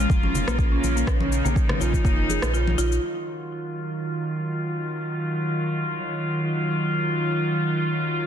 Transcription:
0.00 2.98 C#3 medium
0.00 2.98 A#3 medium
0.00 1.05 F4 medium
0.10 0.44 F1 medium
0.10 kick loud
0.10 high conga medium
0.10 cabasa soft
0.23 0.34 C#4 medium
0.23 high conga medium
0.35 low conga medium
0.35 cabasa medium
0.47 0.80 A#1 medium
0.47 0.58 A#3 medium
0.47 cross-stick medium
0.47 high conga medium
0.47 cabasa soft
0.59 kick loud
0.59 cabasa soft
0.72 0.82 C#4 medium
0.83 1.04 A#1 medium
0.83 high conga medium
0.83 cabasa medium
0.96 1.02 A#3 medium
0.96 cabasa soft
1.07 1.41 A#1 loud
1.07 3.00 D#4 medium
1.07 kick loud
1.07 cross-stick medium
1.07 cabasa soft
1.20 1.31 C#4 medium
1.20 high conga medium
1.32 cabasa medium
1.45 1.54 A#1 medium
1.45 1.55 A#3 loud
1.45 low conga loud
1.45 cabasa soft
1.56 kick loud
1.56 cabasa soft
1.69 1.76 F3 medium
1.69 cross-stick medium
1.69 low conga medium
1.80 2.01 A#1 medium
1.80 1.92 F4 medium
1.80 high conga medium
1.80 cabasa medium
1.94 kick medium
1.94 cabasa soft
2.05 2.39 F1 medium
2.05 2.12 A#3 medium
2.05 kick loud
2.05 cabasa soft
2.29 2.41 G#4 medium
2.29 high conga medium
2.29 cabasa medium
2.42 2.75 A#1 medium
2.42 cross-stick medium
2.42 cabasa soft
2.54 2.66 F4 medium
2.54 cabasa soft
2.67 high conga medium
2.78 2.99 A#1 medium
2.78 2.90 F4 loud
2.78 cabasa medium
2.92 cabasa soft
3.02 8.27 D#3 medium
3.02 8.27 F#3 medium
3.02 8.27 F4 medium

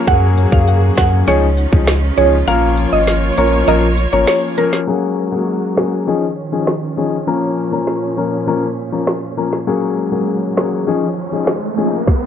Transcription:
0.00 1.24 A#3 medium
0.07 0.46 F#2 loud
0.07 0.49 F#3 loud
0.07 0.49 A#3 medium
0.07 0.49 C#4 medium
0.07 1.27 F#4 medium
0.07 1.26 G#4 medium
0.07 0.49 G#4 loud
0.07 0.26 F#5 loud
0.07 kick loud
0.07 closed hi-hat medium
0.38 closed hi-hat medium
0.52 0.91 F#2 medium
0.52 0.94 F#3 medium
0.52 0.94 A#3 medium
0.52 0.94 C#4 medium
0.52 0.94 G#4 medium
0.52 0.71 F5 medium
0.52 kick medium
0.68 closed hi-hat medium
0.97 1.24 F#2 medium
0.97 1.25 F#3 medium
0.97 1.25 A#3 medium
0.97 1.25 C#4 medium
0.97 1.25 G#4 medium
0.97 1.16 F#5 medium
0.97 kick loud
0.97 snare loud
0.97 closed hi-hat medium
1.27 1.66 C#2 loud
1.27 1.45 F3 loud
1.27 1.45 C#4 medium
1.27 2.46 C#4 medium
1.27 2.46 D#4 medium
1.27 1.45 D#4 medium
1.27 4.84 F4 medium
1.27 1.45 G#4 loud
1.27 1.70 C#5 loud
1.27 closed hi-hat medium
1.57 closed hi-hat soft
1.73 2.11 C#2 loud
1.73 1.90 F3 medium
1.73 1.90 C#4 medium
1.73 1.90 D#4 medium
1.73 1.90 G#4 medium
1.73 kick loud
1.87 snare loud
1.87 closed hi-hat medium
2.17 2.43 C#2 medium
2.17 2.35 F3 medium
2.17 2.35 C#4 medium
2.17 2.35 D#4 medium
2.17 2.35 G#4 medium
2.17 2.27 C#5 medium
2.17 closed hi-hat medium
2.47 2.86 A#1 loud
2.47 3.30 F3 loud
2.47 3.30 A#3 medium
2.47 4.85 A#3 medium
2.47 3.31 C#4 medium
2.47 3.31 A#4 loud
2.47 4.85 C#5 medium
2.47 2.66 F5 loud
2.47 closed hi-hat medium
2.78 closed hi-hat medium
2.92 3.31 G#1 loud
2.92 3.11 D#5 medium
3.07 snare medium
3.07 closed hi-hat medium
3.38 3.64 A#1 medium
3.38 3.65 F3 medium
3.38 3.65 A#3 medium
3.38 3.65 C#4 medium
3.38 3.66 A#4 medium
3.38 3.57 C#5 medium
3.38 closed hi-hat medium
3.68 4.07 A#1 loud
3.68 3.85 F3 loud
3.68 3.85 A#3 medium
3.68 3.85 C#4 medium
3.68 3.85 A#4 loud
3.68 3.77 D#5 medium
3.68 closed hi-hat medium
3.98 closed hi-hat soft
4.13 4.26 G#1 loud
4.13 4.54 F3 medium
4.13 4.54 A#3 medium
4.13 4.54 C#4 medium
4.13 4.54 A#4 medium
4.13 4.22 C#5 medium
4.27 4.37 C#5 medium
4.27 snare loud
4.27 closed hi-hat medium
4.58 4.85 F3 medium
4.58 4.85 A#3 medium
4.58 4.85 C#4 medium
4.58 4.67 A#4 medium
4.58 4.85 A#4 medium
4.58 closed hi-hat medium
4.73 snare medium
4.87 5.29 F#3 medium
4.87 6.07 G#3 medium
4.87 5.29 A#3 medium
4.87 6.06 A#3 medium
4.87 5.29 C#4 medium
4.87 6.06 F#4 medium
4.87 5.29 G#4 medium
5.32 5.74 F#3 medium
5.32 5.74 A#3 medium
5.32 5.74 C#4 medium
5.32 5.74 G#4 medium
5.77 6.05 F#3 medium
5.77 6.05 A#3 medium
5.77 6.05 C#4 medium
5.77 6.05 G#4 medium
5.77 snare loud
6.07 7.27 D#3 medium
6.07 6.24 F3 medium
6.07 9.64 F3 medium
6.07 6.25 C#4 medium
6.07 9.64 C#4 medium
6.07 6.25 D#4 medium
6.07 6.25 G#4 loud
6.52 6.69 F3 medium
6.52 6.70 C#4 medium
6.52 6.70 D#4 medium
6.52 6.70 G#4 medium
6.67 snare loud
6.97 7.14 F3 medium
6.97 7.15 C#4 medium
6.97 7.15 D#4 medium
6.97 7.15 G#4 medium
7.27 10.84 A#2 medium
7.27 7.69 F3 medium
7.27 7.69 A#3 medium
7.27 7.69 C#4 medium
7.27 7.69 A#4 loud
7.72 8.14 F3 medium
7.72 8.14 A#3 medium
7.72 8.14 C#4 medium
7.72 8.14 A#4 medium
7.87 snare medium
8.17 8.45 F3 medium
8.17 8.45 A#3 medium
8.17 8.45 C#4 medium
8.17 8.45 A#4 medium
8.47 8.64 F3 medium
8.47 8.65 A#3 medium
8.47 8.65 C#4 medium
8.47 8.65 A#4 loud
8.92 9.10 F3 medium
8.92 9.10 A#3 medium
8.92 9.10 C#4 medium
8.92 9.10 A#4 medium
9.07 snare loud
9.37 9.55 F3 medium
9.37 9.55 A#3 medium
9.37 9.55 C#4 medium
9.37 9.55 A#4 medium
9.53 snare medium
9.67 10.09 F#3 medium
9.67 10.86 F#3 medium
9.67 10.86 G#3 medium
9.67 10.09 A#3 medium
9.67 10.09 C#4 medium
9.67 10.09 G#4 loud
9.67 riser medium
10.12 10.54 F#3 medium
10.12 10.54 A#3 medium
10.12 10.54 C#4 medium
10.12 10.54 G#4 medium
10.57 10.85 F#3 medium
10.57 10.85 A#3 medium
10.57 10.85 C#4 medium
10.57 10.85 G#4 medium
10.57 snare loud
10.87 12.06 D#3 medium
10.87 11.04 F3 medium
10.87 12.06 F3 medium
10.87 11.05 C#4 medium
10.87 12.06 C#4 medium
10.87 11.05 D#4 medium
10.87 11.05 G#4 loud
11.32 11.50 F3 medium
11.32 11.50 C#4 medium
11.32 11.50 D#4 medium
11.32 11.50 G#4 medium
11.47 snare loud
11.77 11.95 F3 medium
11.77 11.95 C#4 medium
11.77 11.95 D#4 medium
11.77 11.95 G#4 medium
12.07 kick loud
12.07 snare medium

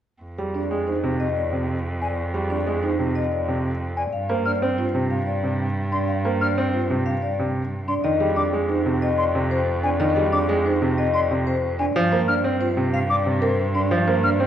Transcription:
0.22 4.03 F2 medium
0.38 0.59 G3 medium
0.38 0.59 G#4 medium
0.54 0.76 D4 medium
0.54 0.76 D5 soft
0.71 0.92 G#3 medium
0.87 1.08 D#4 soft
0.87 1.09 C5 medium
1.04 1.25 C3 medium
1.20 1.41 D#5 medium
1.37 1.57 D5 medium
1.52 1.74 C3 soft
2.01 2.23 D5 medium
2.01 2.07 G#5 medium
2.34 2.55 G3 medium
2.34 2.55 G#4 medium
2.50 2.71 D4 medium
2.50 2.71 D5 medium
2.67 2.88 G#3 medium
2.82 3.04 D#4 medium
2.82 3.04 C5 medium
2.99 3.20 C3 medium
3.15 3.37 D#5 medium
3.32 3.53 D5 medium
3.48 3.69 C3 medium
3.97 4.18 D5 medium
3.97 4.03 G#5 medium
4.13 7.94 G2 medium
4.13 4.34 F5 medium
4.29 4.51 A#3 medium
4.29 4.51 C5 medium
4.46 4.67 D4 medium
4.46 4.67 D5 medium
4.46 4.52 F6 medium
4.62 4.83 C4 medium
4.78 5.00 F4 medium
4.78 4.99 C5 medium
4.94 5.16 C3 medium
5.10 5.32 F5 medium
5.26 5.48 D5 medium
5.43 5.65 C3 medium
5.92 6.14 D4 medium
5.92 6.14 D5 medium
5.92 5.98 C6 medium
6.08 6.30 F5 medium
6.25 6.46 A#3 medium
6.25 6.46 C5 medium
6.41 6.63 D4 medium
6.41 6.63 D5 medium
6.41 6.47 F6 medium
6.58 6.79 C4 medium
6.73 6.95 F4 medium
6.73 6.95 C5 medium
6.90 7.12 C3 medium
7.06 7.28 F5 medium
7.22 7.44 D5 medium
7.39 7.60 C3 medium
7.88 8.09 D4 medium
7.88 8.09 D5 medium
7.88 7.94 C6 medium
8.04 11.85 F2 medium
8.04 8.26 D#3 medium
8.04 8.25 D#5 medium
8.20 8.42 G3 medium
8.20 8.42 G#4 medium
8.36 8.58 D4 medium
8.36 8.58 D5 medium
8.36 8.43 D6 medium
8.53 8.75 G#3 medium
8.69 8.91 D#4 medium
8.69 8.91 C5 medium
8.86 9.07 C3 medium
9.02 9.24 D#5 medium
9.18 9.40 D5 medium
9.18 9.24 C6 medium
9.35 9.56 C3 medium
9.51 9.72 C5 medium
9.84 10.05 D4 medium
9.84 10.05 D5 medium
9.84 9.90 G#5 medium
10.00 10.21 D#3 medium
10.00 10.21 D#5 medium
10.16 10.38 G3 medium
10.16 10.38 G#4 medium
10.32 10.54 D4 medium
10.32 10.54 D5 medium
10.32 10.39 D6 medium
10.49 10.70 G#3 medium
10.65 10.86 D#4 medium
10.65 10.87 C5 medium
10.82 11.03 C3 medium
10.98 11.19 D#5 medium
11.14 11.35 D5 medium
11.14 11.20 C6 medium
11.31 11.52 C3 medium
11.47 11.68 C5 medium
11.79 12.01 D4 medium
11.79 12.01 D5 medium
11.79 11.85 G#5 medium
11.96 14.47 G2 medium
11.96 12.17 F3 medium
11.96 12.17 F5 medium
12.12 12.33 A#3 medium
12.12 12.33 C5 medium
12.28 12.50 D4 medium
12.28 12.50 D5 medium
12.28 12.34 F6 medium
12.44 12.66 C4 medium
12.61 12.82 F4 medium
12.61 12.82 C5 medium
12.77 12.98 C3 medium
12.93 13.00 F5 medium
12.93 13.15 F5 medium
13.10 13.31 D5 medium
13.10 13.16 D6 medium
13.26 13.47 C3 medium
13.42 13.64 A#4 medium
13.42 13.64 C5 medium
13.75 13.96 D4 medium
13.75 13.96 D5 medium
13.75 13.81 C6 medium
13.91 14.13 F3 medium
13.91 14.12 F5 medium
14.07 14.29 A#3 medium
14.07 14.29 C5 medium
14.24 14.45 D4 medium
14.24 14.45 D5 medium
14.24 14.30 F6 medium
14.40 14.47 C4 medium

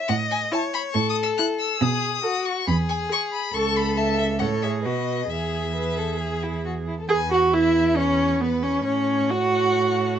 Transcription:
0.00 0.10 E5 medium
0.08 0.43 A2 medium
0.08 0.54 D#5 medium
0.08 0.16 F#5 medium
0.31 0.39 G#5 medium
0.52 0.84 E4 medium
0.52 0.95 C#5 medium
0.52 0.61 A5 loud
0.74 0.82 B5 loud
0.93 1.29 A2 medium
0.93 1.79 A4 medium
0.93 1.09 C#6 loud
1.10 1.16 D#6 medium
1.23 1.29 E6 medium
1.38 1.71 E4 medium
1.38 1.46 F#6 loud
1.59 1.83 E6 loud
1.80 2.15 B2 medium
1.80 2.23 G#4 medium
1.80 2.47 D#6 loud
2.24 2.67 F#4 medium
2.24 2.57 A4 medium
2.45 2.67 C#6 loud
2.68 3.02 E2 medium
2.68 3.53 G#4 medium
2.68 2.76 B5 loud
2.89 2.97 G#5 loud
3.10 3.43 G#4 medium
3.10 3.20 C#6 loud
3.33 3.56 B5 medium
3.54 4.42 C#2 medium
3.54 3.94 A4 medium
3.54 3.99 A4 medium
3.54 3.78 C#6 loud
3.76 3.99 B5 medium
3.97 4.40 A4 medium
3.97 4.41 E5 medium
3.97 4.18 A5 medium
4.18 4.26 E5 medium
4.39 4.87 A2 medium
4.39 4.65 A4 medium
4.39 4.83 C#5 medium
4.39 4.47 F#5 medium
4.62 4.87 G#4 medium
4.62 4.70 E5 medium
4.83 5.30 B2 medium
4.83 5.29 F#4 medium
4.83 5.28 B4 medium
4.83 5.31 D#5 medium
5.29 6.86 E2 medium
5.29 6.86 G#4 medium
5.29 5.70 G#4 medium
5.29 6.64 E5 medium
5.75 5.99 B4 medium
5.98 6.19 A4 medium
6.20 6.45 G#4 medium
6.43 6.64 E4 medium
6.65 6.73 F#4 medium
6.87 6.98 E4 soft
7.00 7.09 A4 soft
7.09 8.81 E2 medium
7.09 7.17 G#4 medium
7.09 7.51 B4 medium
7.09 7.30 G#5 medium
7.31 7.55 F#4 medium
7.31 7.41 F#5 medium
7.54 7.98 E4 medium
7.54 8.40 B4 medium
7.54 7.97 E5 medium
7.97 8.42 C#4 medium
7.97 8.41 C#5 medium
8.41 8.65 B3 medium
8.41 8.87 B4 medium
8.41 8.65 B4 medium
8.63 8.84 C#4 medium
8.63 8.85 C#5 medium
8.85 10.19 A2 medium
8.85 9.32 C#4 medium
8.85 9.31 C#5 medium
8.85 9.30 C#5 medium
9.30 10.19 F#4 medium
9.30 10.19 C#5 medium
9.30 10.19 F#5 medium

